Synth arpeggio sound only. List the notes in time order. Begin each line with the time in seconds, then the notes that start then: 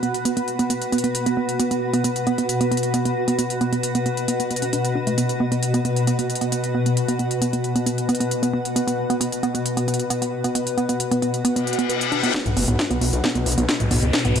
0.03 B3
0.25 B3
0.37 B3
0.59 B3
0.70 B3
0.92 B3
1.04 B3
1.26 B3
1.37 B3
1.60 B3
1.71 B3
1.94 B3
2.04 B3
2.27 B3
2.38 B3
2.61 B3
2.71 B3
2.94 B3
3.05 B3
3.28 B3
3.39 B3
3.61 B3
3.73 B3
3.95 B3
4.06 B3
4.28 B3
4.40 B3
4.51 B3
4.62 C#4
4.73 D4
4.95 D4
5.07 A3
5.18 B3
5.40 B3
5.52 B3
5.74 B3
5.85 B3
6.07 B3
6.19 B3
6.41 B3
6.52 B3
6.75 B3
6.86 B3
7.08 B3
7.19 B3
7.42 B3
7.53 B3
7.76 B3
7.86 B3
8.09 B3
8.20 B3
8.43 B3
8.54 B3
8.76 B3
8.87 B3
9.10 B3
9.21 B3
9.43 B3
9.55 B3
9.77 B3
9.88 B3
10.10 B3
10.22 B3
10.44 B3
10.55 B3
10.78 B3
10.89 B3
11.11 B3
11.22 B3
11.45 B3
11.56 B3
11.79 B3
11.89 B4
12.12 D4
12.23 B3
12.34 B3
12.57 B3
12.68 B3
12.91 B3
13.01 B3
13.24 B3
13.35 B3
13.58 B3
13.69 B3
13.91 B3
14.02 B3
14.25 B3
14.36 B3